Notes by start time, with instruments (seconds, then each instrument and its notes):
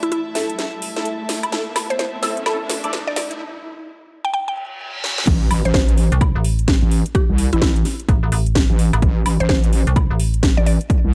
Already playing: string section A3 E4 E5 A5, riser
0.03 synth pluck E4, closed hi-hat
0.12 synth pluck E4, closed hi-hat
0.35 synth stab A3 E4 A4 E5, snare, open hi-hat
0.50 closed hi-hat
0.59 snare, closed hi-hat
0.82 open hi-hat
0.96 synth stab A3 E4 A4 E5, snare, closed hi-hat
1.05 closed hi-hat
1.29 snare, open hi-hat
1.43 closed hi-hat, high woodblock
1.52 synth stab A3 E4 A4 E5, snare, closed hi-hat
1.76 snare, open hi-hat, high woodblock
1.90 synth pluck C5, closed hi-hat
1.99 synth pluck C5, snare, closed hi-hat
2.23 synth stab A3 E4 A4 E5, snare, open hi-hat
2.37 closed hi-hat
2.46 synth stab A3 E4 A4 E5, snare, closed hi-hat, high woodblock
2.69 snare, open hi-hat
2.84 synth stab A3 E4 A4 D5, closed hi-hat
2.93 snare, closed hi-hat
3.07 synth pluck D5
3.16 synth pluck D5, snare, open hi-hat
3.31 closed hi-hat
4.25 synth pluck G5
4.34 synth pluck G5, reverse cymbal
4.48 synth pluck G5
5.04 snare
5.18 snare
5.27 wobble bass A1, kick, closed hi-hat, crash, impact
5.51 wobble bass A1, open hi-hat, high woodblock
5.65 wobble bass A1, synth pluck C5, closed hi-hat
5.74 wobble bass A1, synth pluck C5, kick, snare
5.89 closed hi-hat
5.98 open hi-hat
6.12 fm bass C2, closed hi-hat
6.21 kick, closed hi-hat, high woodblock
6.35 fm bass A1
6.44 open hi-hat
6.59 closed hi-hat
6.68 kick, snare, closed hi-hat
6.82 wobble bass A1
6.91 open hi-hat
7.06 closed hi-hat
7.15 synth pluck G4, kick, closed hi-hat
7.29 wobble bass C2
7.38 open hi-hat
7.53 wobble bass A1, synth pluck E4, closed hi-hat
7.62 wobble bass A1, synth pluck E4, kick, snare
7.76 closed hi-hat
7.85 snare, open hi-hat
8.00 closed hi-hat
8.09 fm bass A1, kick, closed hi-hat
8.23 fm bass A1
8.32 fm bass A1, open hi-hat
8.46 closed hi-hat
8.55 kick, snare, closed hi-hat
8.70 wobble bass A1
8.79 open hi-hat
8.93 fm bass A1, closed hi-hat, high woodblock
9.02 wobble bass A1, kick, closed hi-hat
9.26 wobble bass A1, open hi-hat, high woodblock
9.40 wobble bass A1, synth pluck C5, closed hi-hat
9.49 wobble bass A1, synth pluck C5, kick, snare
9.64 closed hi-hat
9.73 open hi-hat
9.87 fm bass C2, closed hi-hat
9.96 kick, closed hi-hat, high woodblock
10.11 fm bass A1
10.20 open hi-hat
10.34 closed hi-hat
10.43 kick, snare, closed hi-hat
10.57 wobble bass A1, synth pluck D5
10.66 synth pluck D5, open hi-hat
10.81 closed hi-hat
10.90 kick, closed hi-hat
11.04 wobble bass C2